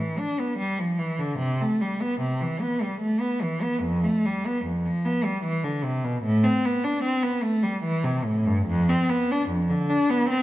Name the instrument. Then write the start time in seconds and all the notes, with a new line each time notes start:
cello
Already playing: E3
0.18 D4
0.39 B3
0.59 G3
0.78 F3
0.99 E3
1.19 D3
1.39 C3
1.60 A3
1.81 G3
2.01 B3
2.21 C3
2.41 E3
2.61 B3
2.82 G3
3.01 A3
3.20 B3
3.42 E3
3.62 B3
3.83 F2
4.04 A3
4.26 G3
4.46 B3
4.65 F2
4.86 F3
5.05 B3
5.25 G3
5.44 E3
5.64 D3
5.83 C3
6.04 B2
6.24 A2
6.43 C4
6.65 B3
6.84 D4
7.04 C4
7.23 B3
7.43 A3
7.63 G3
7.84 E3
8.04 C3
8.25 A2
8.45 G2
8.67 F2
8.89 C4
9.09 B3
9.31 D4
9.49 F2
9.69 D3
9.90 D4
10.10 B3
10.29 C4